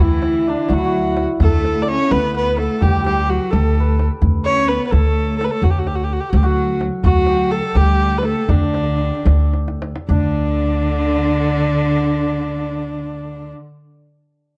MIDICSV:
0, 0, Header, 1, 6, 480
1, 0, Start_track
1, 0, Tempo, 469484
1, 1434, Time_signature, 6, 3, 24, 8
1, 7192, Tempo, 482315
1, 8632, Tempo, 524934
1, 9592, Tempo, 568720
1, 10072, Tempo, 585938
1, 13735, End_track
2, 0, Start_track
2, 0, Title_t, "Kamancheh"
2, 0, Program_c, 0, 110
2, 22, Note_on_c, 0, 64, 79
2, 500, Note_on_c, 0, 62, 74
2, 515, Note_off_c, 0, 64, 0
2, 746, Note_on_c, 0, 66, 81
2, 761, Note_off_c, 0, 62, 0
2, 1271, Note_off_c, 0, 66, 0
2, 1448, Note_on_c, 0, 69, 98
2, 1860, Note_on_c, 0, 74, 71
2, 1875, Note_off_c, 0, 69, 0
2, 1921, Note_on_c, 0, 73, 94
2, 1936, Note_off_c, 0, 74, 0
2, 2160, Note_on_c, 0, 71, 90
2, 2175, Note_off_c, 0, 73, 0
2, 2398, Note_off_c, 0, 71, 0
2, 2413, Note_on_c, 0, 71, 83
2, 2628, Note_off_c, 0, 71, 0
2, 2644, Note_on_c, 0, 69, 78
2, 2886, Note_on_c, 0, 67, 86
2, 2902, Note_off_c, 0, 69, 0
2, 3121, Note_off_c, 0, 67, 0
2, 3129, Note_on_c, 0, 67, 87
2, 3371, Note_on_c, 0, 66, 77
2, 3386, Note_off_c, 0, 67, 0
2, 3582, Note_on_c, 0, 69, 77
2, 3597, Note_off_c, 0, 66, 0
2, 4129, Note_off_c, 0, 69, 0
2, 4550, Note_on_c, 0, 73, 96
2, 4789, Note_on_c, 0, 71, 84
2, 4804, Note_off_c, 0, 73, 0
2, 4961, Note_off_c, 0, 71, 0
2, 4975, Note_on_c, 0, 71, 59
2, 5022, Note_on_c, 0, 69, 78
2, 5038, Note_off_c, 0, 71, 0
2, 5496, Note_off_c, 0, 69, 0
2, 5503, Note_on_c, 0, 69, 79
2, 5565, Note_on_c, 0, 71, 63
2, 5581, Note_off_c, 0, 69, 0
2, 5629, Note_on_c, 0, 69, 85
2, 5645, Note_off_c, 0, 71, 0
2, 5762, Note_on_c, 0, 66, 60
2, 5777, Note_off_c, 0, 69, 0
2, 5834, Note_on_c, 0, 67, 62
2, 5849, Note_off_c, 0, 66, 0
2, 5916, Note_on_c, 0, 66, 58
2, 5932, Note_off_c, 0, 67, 0
2, 6000, Note_on_c, 0, 67, 67
2, 6015, Note_off_c, 0, 66, 0
2, 6085, Note_on_c, 0, 66, 65
2, 6100, Note_off_c, 0, 67, 0
2, 6172, Note_on_c, 0, 67, 62
2, 6188, Note_off_c, 0, 66, 0
2, 6264, Note_on_c, 0, 66, 66
2, 6280, Note_off_c, 0, 67, 0
2, 6342, Note_on_c, 0, 67, 61
2, 6357, Note_off_c, 0, 66, 0
2, 6433, Note_on_c, 0, 66, 60
2, 6448, Note_off_c, 0, 67, 0
2, 6508, Note_on_c, 0, 67, 58
2, 6524, Note_off_c, 0, 66, 0
2, 6607, Note_on_c, 0, 66, 72
2, 6622, Note_off_c, 0, 67, 0
2, 6970, Note_off_c, 0, 66, 0
2, 7199, Note_on_c, 0, 66, 92
2, 7668, Note_on_c, 0, 69, 95
2, 7683, Note_off_c, 0, 66, 0
2, 7918, Note_on_c, 0, 67, 94
2, 7933, Note_off_c, 0, 69, 0
2, 8332, Note_on_c, 0, 71, 63
2, 8347, Note_off_c, 0, 67, 0
2, 8402, Note_on_c, 0, 69, 83
2, 8417, Note_off_c, 0, 71, 0
2, 8647, Note_on_c, 0, 62, 85
2, 8661, Note_off_c, 0, 69, 0
2, 9600, Note_off_c, 0, 62, 0
2, 10070, Note_on_c, 0, 62, 80
2, 12878, Note_off_c, 0, 62, 0
2, 13735, End_track
3, 0, Start_track
3, 0, Title_t, "Santur"
3, 0, Program_c, 1, 15
3, 0, Note_on_c, 1, 64, 68
3, 0, Note_on_c, 1, 67, 62
3, 483, Note_on_c, 1, 62, 64
3, 702, Note_on_c, 1, 66, 67
3, 764, Note_off_c, 1, 67, 0
3, 795, Note_off_c, 1, 64, 0
3, 799, Note_on_c, 1, 64, 60
3, 860, Note_off_c, 1, 66, 0
3, 865, Note_on_c, 1, 66, 75
3, 1455, Note_on_c, 1, 69, 81
3, 2160, Note_on_c, 1, 71, 79
3, 2870, Note_on_c, 1, 67, 76
3, 2931, Note_off_c, 1, 66, 0
3, 2949, Note_off_c, 1, 67, 0
3, 2953, Note_on_c, 1, 67, 54
3, 3022, Note_off_c, 1, 67, 0
3, 3026, Note_on_c, 1, 67, 63
3, 3120, Note_off_c, 1, 67, 0
3, 3124, Note_on_c, 1, 67, 56
3, 3188, Note_off_c, 1, 67, 0
3, 3192, Note_on_c, 1, 67, 63
3, 3258, Note_off_c, 1, 67, 0
3, 3262, Note_on_c, 1, 67, 53
3, 3329, Note_off_c, 1, 67, 0
3, 3333, Note_on_c, 1, 67, 61
3, 3398, Note_off_c, 1, 67, 0
3, 3402, Note_on_c, 1, 67, 55
3, 3582, Note_off_c, 1, 69, 0
3, 3586, Note_on_c, 1, 69, 68
3, 3879, Note_off_c, 1, 71, 0
3, 3883, Note_on_c, 1, 71, 60
3, 4299, Note_off_c, 1, 62, 0
3, 4354, Note_off_c, 1, 64, 0
3, 4555, Note_on_c, 1, 73, 86
3, 5029, Note_off_c, 1, 69, 0
3, 5033, Note_on_c, 1, 69, 61
3, 5527, Note_off_c, 1, 69, 0
3, 5531, Note_on_c, 1, 69, 58
3, 6572, Note_on_c, 1, 66, 81
3, 6634, Note_off_c, 1, 67, 0
3, 6676, Note_off_c, 1, 71, 0
3, 7166, Note_off_c, 1, 73, 0
3, 7199, Note_off_c, 1, 66, 0
3, 7203, Note_on_c, 1, 66, 80
3, 7439, Note_on_c, 1, 67, 73
3, 7499, Note_off_c, 1, 66, 0
3, 7656, Note_off_c, 1, 69, 0
3, 7660, Note_on_c, 1, 69, 81
3, 7890, Note_off_c, 1, 67, 0
3, 7894, Note_on_c, 1, 67, 76
3, 8639, Note_on_c, 1, 62, 62
3, 10061, Note_off_c, 1, 62, 0
3, 10064, Note_on_c, 1, 62, 81
3, 10343, Note_off_c, 1, 69, 0
3, 10712, Note_off_c, 1, 67, 0
3, 13122, Note_off_c, 1, 62, 0
3, 13735, End_track
4, 0, Start_track
4, 0, Title_t, "Cello section"
4, 0, Program_c, 2, 48
4, 0, Note_on_c, 2, 52, 75
4, 473, Note_off_c, 2, 52, 0
4, 473, Note_on_c, 2, 50, 67
4, 714, Note_off_c, 2, 50, 0
4, 717, Note_on_c, 2, 54, 71
4, 1256, Note_off_c, 2, 54, 0
4, 1433, Note_on_c, 2, 57, 87
4, 1880, Note_off_c, 2, 57, 0
4, 1925, Note_on_c, 2, 61, 82
4, 2159, Note_on_c, 2, 59, 77
4, 2160, Note_off_c, 2, 61, 0
4, 2384, Note_off_c, 2, 59, 0
4, 2396, Note_on_c, 2, 59, 75
4, 2619, Note_off_c, 2, 59, 0
4, 2635, Note_on_c, 2, 57, 75
4, 2869, Note_on_c, 2, 55, 77
4, 2875, Note_off_c, 2, 57, 0
4, 3110, Note_off_c, 2, 55, 0
4, 3122, Note_on_c, 2, 55, 76
4, 3343, Note_off_c, 2, 55, 0
4, 3356, Note_on_c, 2, 54, 67
4, 3596, Note_off_c, 2, 54, 0
4, 3603, Note_on_c, 2, 57, 66
4, 4140, Note_off_c, 2, 57, 0
4, 4554, Note_on_c, 2, 61, 81
4, 4778, Note_off_c, 2, 61, 0
4, 4788, Note_on_c, 2, 59, 72
4, 5032, Note_off_c, 2, 59, 0
4, 5037, Note_on_c, 2, 57, 70
4, 5509, Note_off_c, 2, 57, 0
4, 5521, Note_on_c, 2, 57, 64
4, 5616, Note_off_c, 2, 57, 0
4, 5628, Note_on_c, 2, 57, 52
4, 5743, Note_off_c, 2, 57, 0
4, 6513, Note_on_c, 2, 55, 59
4, 6580, Note_off_c, 2, 55, 0
4, 6587, Note_on_c, 2, 54, 78
4, 6960, Note_off_c, 2, 54, 0
4, 7201, Note_on_c, 2, 54, 75
4, 7865, Note_off_c, 2, 54, 0
4, 7917, Note_on_c, 2, 55, 77
4, 8394, Note_off_c, 2, 55, 0
4, 8397, Note_on_c, 2, 57, 81
4, 8639, Note_off_c, 2, 57, 0
4, 8646, Note_on_c, 2, 50, 73
4, 9564, Note_off_c, 2, 50, 0
4, 10057, Note_on_c, 2, 50, 99
4, 12865, Note_off_c, 2, 50, 0
4, 13735, End_track
5, 0, Start_track
5, 0, Title_t, "Upright bass"
5, 0, Program_c, 3, 32
5, 0, Note_on_c, 3, 38, 83
5, 547, Note_off_c, 3, 38, 0
5, 712, Note_on_c, 3, 38, 86
5, 1273, Note_off_c, 3, 38, 0
5, 1430, Note_on_c, 3, 38, 84
5, 1992, Note_off_c, 3, 38, 0
5, 2160, Note_on_c, 3, 38, 91
5, 2718, Note_off_c, 3, 38, 0
5, 2886, Note_on_c, 3, 38, 86
5, 3442, Note_off_c, 3, 38, 0
5, 3608, Note_on_c, 3, 38, 89
5, 4163, Note_off_c, 3, 38, 0
5, 4310, Note_on_c, 3, 38, 86
5, 4872, Note_off_c, 3, 38, 0
5, 5033, Note_on_c, 3, 38, 92
5, 5593, Note_off_c, 3, 38, 0
5, 5744, Note_on_c, 3, 38, 84
5, 6308, Note_off_c, 3, 38, 0
5, 6469, Note_on_c, 3, 38, 96
5, 7030, Note_off_c, 3, 38, 0
5, 7197, Note_on_c, 3, 38, 84
5, 7746, Note_off_c, 3, 38, 0
5, 7905, Note_on_c, 3, 38, 97
5, 8473, Note_off_c, 3, 38, 0
5, 8637, Note_on_c, 3, 38, 87
5, 9189, Note_off_c, 3, 38, 0
5, 9339, Note_on_c, 3, 38, 93
5, 9912, Note_off_c, 3, 38, 0
5, 10060, Note_on_c, 3, 38, 81
5, 12869, Note_off_c, 3, 38, 0
5, 13735, End_track
6, 0, Start_track
6, 0, Title_t, "Tombak"
6, 228, Note_on_c, 9, 63, 63
6, 330, Note_off_c, 9, 63, 0
6, 476, Note_on_c, 9, 62, 23
6, 579, Note_off_c, 9, 62, 0
6, 701, Note_on_c, 9, 63, 63
6, 804, Note_off_c, 9, 63, 0
6, 1193, Note_on_c, 9, 63, 63
6, 1295, Note_off_c, 9, 63, 0
6, 1432, Note_on_c, 9, 64, 92
6, 1534, Note_off_c, 9, 64, 0
6, 1684, Note_on_c, 9, 63, 59
6, 1786, Note_off_c, 9, 63, 0
6, 1922, Note_on_c, 9, 62, 24
6, 2024, Note_off_c, 9, 62, 0
6, 2163, Note_on_c, 9, 63, 63
6, 2266, Note_off_c, 9, 63, 0
6, 2640, Note_on_c, 9, 63, 58
6, 2743, Note_off_c, 9, 63, 0
6, 2880, Note_on_c, 9, 64, 80
6, 2982, Note_off_c, 9, 64, 0
6, 3133, Note_on_c, 9, 63, 61
6, 3235, Note_off_c, 9, 63, 0
6, 3373, Note_on_c, 9, 62, 21
6, 3475, Note_off_c, 9, 62, 0
6, 3606, Note_on_c, 9, 63, 60
6, 3708, Note_off_c, 9, 63, 0
6, 3848, Note_on_c, 9, 62, 20
6, 3950, Note_off_c, 9, 62, 0
6, 4083, Note_on_c, 9, 63, 57
6, 4185, Note_off_c, 9, 63, 0
6, 4313, Note_on_c, 9, 64, 74
6, 4416, Note_off_c, 9, 64, 0
6, 4801, Note_on_c, 9, 62, 22
6, 4904, Note_off_c, 9, 62, 0
6, 5041, Note_on_c, 9, 63, 57
6, 5144, Note_off_c, 9, 63, 0
6, 5530, Note_on_c, 9, 63, 56
6, 5632, Note_off_c, 9, 63, 0
6, 5754, Note_on_c, 9, 64, 74
6, 5856, Note_off_c, 9, 64, 0
6, 5999, Note_on_c, 9, 63, 52
6, 6101, Note_off_c, 9, 63, 0
6, 6238, Note_on_c, 9, 62, 25
6, 6341, Note_off_c, 9, 62, 0
6, 6481, Note_on_c, 9, 63, 59
6, 6583, Note_off_c, 9, 63, 0
6, 6961, Note_on_c, 9, 63, 60
6, 7063, Note_off_c, 9, 63, 0
6, 7195, Note_on_c, 9, 64, 76
6, 7294, Note_off_c, 9, 64, 0
6, 7419, Note_on_c, 9, 63, 61
6, 7519, Note_off_c, 9, 63, 0
6, 7662, Note_on_c, 9, 62, 25
6, 7761, Note_off_c, 9, 62, 0
6, 7909, Note_on_c, 9, 63, 63
6, 8008, Note_off_c, 9, 63, 0
6, 8381, Note_on_c, 9, 63, 64
6, 8481, Note_off_c, 9, 63, 0
6, 8637, Note_on_c, 9, 64, 80
6, 8728, Note_off_c, 9, 64, 0
6, 8870, Note_on_c, 9, 63, 61
6, 8962, Note_off_c, 9, 63, 0
6, 9349, Note_on_c, 9, 63, 68
6, 9441, Note_off_c, 9, 63, 0
6, 9595, Note_on_c, 9, 63, 51
6, 9679, Note_off_c, 9, 63, 0
6, 9716, Note_on_c, 9, 62, 62
6, 9801, Note_off_c, 9, 62, 0
6, 9835, Note_on_c, 9, 63, 71
6, 9919, Note_off_c, 9, 63, 0
6, 9950, Note_on_c, 9, 62, 80
6, 10034, Note_off_c, 9, 62, 0
6, 10076, Note_on_c, 9, 64, 68
6, 10158, Note_off_c, 9, 64, 0
6, 13735, End_track
0, 0, End_of_file